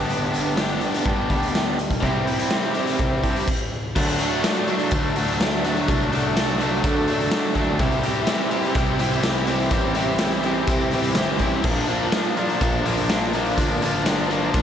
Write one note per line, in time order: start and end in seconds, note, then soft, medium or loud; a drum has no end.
0.00 0.78 G1 loud
0.00 2.00 G3 medium
0.00 2.02 G3 medium
0.00 0.55 B3 loud
0.00 0.56 D4 loud
0.00 0.59 G4 loud
0.09 closed hi-hat medium
0.34 closed hi-hat medium
0.56 1.76 B3 medium
0.56 1.77 D4 medium
0.56 1.78 G4 medium
0.56 snare loud
0.56 closed hi-hat medium
0.81 closed hi-hat medium
0.94 snare soft
0.94 closed hi-hat medium
1.05 1.17 G2 medium
1.05 1.28 B3 medium
1.05 1.29 D4 medium
1.05 1.28 G4 medium
1.05 kick loud
1.05 closed hi-hat medium
1.30 1.87 D2 medium
1.30 1.78 B3 medium
1.30 1.77 D4 medium
1.30 1.77 G4 medium
1.30 kick medium
1.30 closed hi-hat medium
1.43 closed hi-hat medium
1.55 snare loud
1.55 closed hi-hat medium
1.79 closed hi-hat medium
1.91 2.02 B1 medium
1.91 kick medium
1.91 closed hi-hat medium
2.00 2.25 C2 loud
2.00 3.22 E3 medium
2.00 2.73 G3 medium
2.00 2.73 C4 loud
2.00 2.74 E4 medium
2.00 2.72 G4 loud
2.00 kick medium
2.00 closed hi-hat medium
2.27 closed hi-hat medium
2.39 closed hi-hat medium
2.50 snare loud
2.50 closed hi-hat medium
2.74 3.47 G3 medium
2.74 3.47 C4 medium
2.74 3.46 E4 medium
2.74 3.45 G4 medium
2.74 closed hi-hat medium
2.87 snare soft
2.87 closed hi-hat medium
2.99 3.22 C2 loud
2.99 kick loud
2.99 closed hi-hat medium
3.22 3.46 G2 medium
3.22 3.47 E3 medium
3.22 3.46 C4 medium
3.22 3.46 E4 medium
3.22 3.46 G4 medium
3.22 kick medium
3.22 closed hi-hat medium
3.36 closed hi-hat medium
3.48 kick loud
3.48 crash medium
3.95 4.18 D2 loud
3.95 4.20 F#3 loud
3.95 4.21 A3 loud
3.95 4.21 D4 loud
3.95 7.76 F#4 medium
3.95 7.76 D5 medium
3.95 7.76 A5 medium
3.95 kick loud
3.95 crash loud
4.08 closed hi-hat soft
4.20 4.44 F#3 medium
4.20 4.44 A3 medium
4.20 4.44 D4 medium
4.20 closed hi-hat medium
4.44 4.67 F#3 loud
4.44 4.69 A3 loud
4.44 4.69 D4 loud
4.44 snare loud
4.44 closed hi-hat loud
4.56 closed hi-hat soft
4.68 4.92 F#3 medium
4.68 4.93 A3 loud
4.68 4.94 D4 loud
4.68 closed hi-hat medium
4.79 closed hi-hat medium
4.91 5.84 D2 loud
4.91 5.16 F#3 loud
4.91 5.17 A3 medium
4.91 kick loud
4.91 closed hi-hat loud
4.95 5.18 D4 loud
5.16 5.41 F#3 medium
5.16 5.41 A3 medium
5.16 5.42 D4 medium
5.16 closed hi-hat medium
5.28 closed hi-hat medium
5.40 5.64 F#3 loud
5.40 5.64 A3 loud
5.40 5.65 D4 loud
5.40 snare loud
5.40 closed hi-hat loud
5.52 closed hi-hat soft
5.65 5.87 F#3 medium
5.65 5.87 A3 medium
5.65 5.88 D4 loud
5.65 snare soft
5.65 closed hi-hat medium
5.77 closed hi-hat soft
5.88 6.80 C2 loud
5.88 6.11 F#3 medium
5.88 6.11 A3 loud
5.88 6.11 D4 loud
5.88 kick loud
5.88 closed hi-hat loud
6.12 6.35 F#3 medium
6.12 6.36 A3 loud
6.12 6.36 D4 loud
6.12 closed hi-hat medium
6.36 6.59 F#3 loud
6.36 6.60 A3 loud
6.36 6.60 D4 loud
6.36 snare loud
6.36 closed hi-hat loud
6.48 closed hi-hat soft
6.60 6.83 F#3 medium
6.60 6.84 A3 loud
6.60 6.84 D4 loud
6.60 closed hi-hat medium
6.84 7.52 D3 loud
6.84 7.07 F#3 medium
6.84 7.07 A3 loud
6.84 7.08 D4 loud
6.84 kick loud
6.84 closed hi-hat loud
7.08 7.30 F#3 medium
7.08 7.31 A3 medium
7.08 7.32 D4 medium
7.08 closed hi-hat medium
7.20 closed hi-hat soft
7.31 7.54 F#3 loud
7.31 7.54 A3 loud
7.31 7.55 D4 loud
7.31 snare loud
7.31 closed hi-hat loud
7.55 7.78 D2 medium
7.55 7.78 F#3 medium
7.55 7.78 A3 loud
7.55 7.79 D4 loud
7.55 kick medium
7.55 snare soft
7.55 closed hi-hat medium
7.79 8.02 C2 loud
7.79 8.02 E3 medium
7.79 8.03 G3 loud
7.79 8.03 C4 loud
7.79 8.04 E4 loud
7.79 11.61 G4 medium
7.79 8.05 G4 loud
7.79 11.61 E5 medium
7.79 9.70 C6 medium
7.79 kick loud
7.79 closed hi-hat medium
7.91 closed hi-hat soft
8.03 8.26 E3 medium
8.03 8.28 G3 medium
8.03 8.27 C4 medium
8.03 8.28 E4 medium
8.03 8.28 G4 loud
8.03 closed hi-hat medium
8.27 8.50 E3 loud
8.27 8.51 G3 medium
8.27 8.51 C4 loud
8.27 8.52 E4 loud
8.27 8.53 G4 loud
8.27 snare loud
8.27 closed hi-hat loud
8.39 closed hi-hat soft
8.51 8.74 E3 loud
8.51 8.74 G3 medium
8.51 8.75 C4 medium
8.51 8.75 E4 medium
8.51 8.76 G4 loud
8.51 closed hi-hat medium
8.63 closed hi-hat medium
8.75 9.68 C2 loud
8.75 8.98 E3 loud
8.75 8.98 G3 loud
8.75 8.99 C4 loud
8.75 8.99 E4 loud
8.75 9.00 G4 loud
8.75 kick loud
8.75 closed hi-hat loud
8.99 9.22 E3 medium
8.99 9.23 G3 medium
8.99 9.23 C4 medium
8.99 9.24 E4 medium
8.99 9.24 G4 medium
8.99 closed hi-hat medium
9.11 closed hi-hat medium
9.23 9.45 E3 loud
9.23 9.46 G3 loud
9.23 9.46 C4 loud
9.23 9.47 E4 loud
9.23 9.48 G4 loud
9.23 snare loud
9.23 closed hi-hat loud
9.35 closed hi-hat medium
9.47 9.71 E3 loud
9.47 9.70 G3 loud
9.47 9.72 C4 loud
9.47 9.72 E4 loud
9.47 9.72 G4 loud
9.47 closed hi-hat medium
9.59 closed hi-hat medium
9.71 10.64 A1 medium
9.71 9.94 E3 loud
9.71 9.95 G3 medium
9.71 9.95 C4 loud
9.71 9.96 E4 loud
9.71 9.96 G4 loud
9.71 11.62 D6 medium
9.71 kick loud
9.71 closed hi-hat loud
9.95 10.18 E3 loud
9.95 10.19 G3 medium
9.95 10.19 C4 medium
9.95 10.20 E4 medium
9.95 10.20 G4 medium
9.95 closed hi-hat medium
10.18 10.43 E3 loud
10.18 10.43 G3 medium
10.18 10.44 C4 loud
10.18 10.44 E4 loud
10.18 10.45 G4 loud
10.18 snare loud
10.18 closed hi-hat loud
10.31 closed hi-hat medium
10.43 10.67 E3 medium
10.43 10.67 G3 medium
10.43 10.68 C4 medium
10.43 10.68 E4 loud
10.43 10.68 G4 medium
10.43 closed hi-hat medium
10.67 11.13 C3 medium
10.67 10.92 E3 loud
10.67 10.91 G3 medium
10.67 10.92 C4 medium
10.67 10.93 E4 medium
10.67 10.93 G4 loud
10.67 kick loud
10.67 closed hi-hat loud
10.91 11.15 E3 medium
10.91 11.15 G3 medium
10.91 11.16 C4 medium
10.91 11.16 E4 medium
10.91 11.17 G4 medium
10.91 closed hi-hat medium
11.04 closed hi-hat medium
11.15 11.38 G1 medium
11.15 11.39 E3 loud
11.15 11.40 G3 medium
11.15 11.40 C4 loud
11.15 11.41 E4 loud
11.15 11.41 G4 loud
11.15 snare loud
11.15 closed hi-hat loud
11.39 11.62 A1 medium
11.39 11.63 E3 medium
11.39 11.63 G3 medium
11.39 11.63 C4 loud
11.39 11.64 E4 loud
11.39 11.64 G4 loud
11.39 kick medium
11.39 closed hi-hat medium
11.64 11.87 A#1 loud
11.64 11.88 F3 loud
11.64 11.88 A#3 loud
11.64 11.89 D4 loud
11.64 14.62 F4 medium
11.64 14.62 D5 medium
11.64 14.62 A#5 medium
11.64 kick loud
11.64 crash loud
11.76 closed hi-hat soft
11.88 12.12 F3 medium
11.88 12.12 A#3 medium
11.88 12.13 D4 medium
11.88 closed hi-hat medium
12.12 12.35 F3 loud
12.12 12.36 A#3 loud
12.12 12.38 D4 loud
12.12 snare loud
12.12 closed hi-hat loud
12.25 closed hi-hat soft
12.37 12.60 F3 medium
12.37 12.60 A#3 loud
12.37 12.62 D4 medium
12.37 closed hi-hat medium
12.49 closed hi-hat medium
12.61 13.54 A#1 loud
12.61 12.83 F3 loud
12.61 12.84 A#3 loud
12.61 12.86 D4 loud
12.61 kick loud
12.61 closed hi-hat loud
12.85 13.08 F3 medium
12.85 13.09 A#3 medium
12.85 13.10 D4 medium
12.85 closed hi-hat medium
12.97 closed hi-hat soft
13.09 13.32 F3 loud
13.09 13.33 A#3 loud
13.09 13.35 D4 loud
13.09 snare loud
13.09 closed hi-hat loud
13.21 closed hi-hat soft
13.33 13.57 F3 loud
13.33 13.58 A#3 loud
13.33 13.59 D4 loud
13.33 snare soft
13.33 closed hi-hat medium
13.46 closed hi-hat medium
13.58 14.50 G1 loud
13.58 13.80 F3 medium
13.58 13.81 A#3 loud
13.58 13.82 D4 loud
13.58 kick loud
13.58 closed hi-hat loud
13.81 14.04 F3 medium
13.81 14.05 A#3 medium
13.81 14.06 D4 medium
13.81 closed hi-hat medium
14.05 14.29 F3 loud
14.05 14.29 A#3 loud
14.05 14.31 D4 loud
14.05 snare loud
14.05 closed hi-hat loud
14.19 closed hi-hat soft
14.30 14.52 F3 loud
14.30 14.53 A#3 loud
14.30 14.54 D4 medium
14.30 closed hi-hat medium
14.53 14.62 A#2 loud
14.53 14.62 F3 loud
14.53 14.62 A#3 medium
14.53 14.62 D4 loud
14.53 kick loud
14.53 closed hi-hat loud